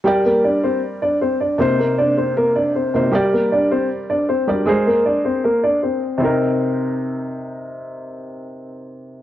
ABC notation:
X:1
M:4/4
L:1/8
Q:1/4=156
K:Cm
V:1 name="Felt piano"
[G,GBd]8 | [C,B,Ec]6- [C,B,Ec] [C,B,Ec] | [G,GBd]6- [G,GBd] [G,GBd] | [A,ABc]8 |
[C,CEB]8- | [C,CEB]8 |]
V:2 name="Grand piano"
[Gg] [B,B] [Dd] [Cc] z [Dd] [Cc] [Dd] | [Cc] [B,B] [Dd] [Cc] [B,B] [Dd] [Cc]2 | [Gg] [B,B] [Dd] [Cc] z [Dd] [Cc] [Dd] | [A,A] [B,B] [Dd] [Cc] [B,B] [Dd] [Cc]2 |
C6 z2 | z8 |]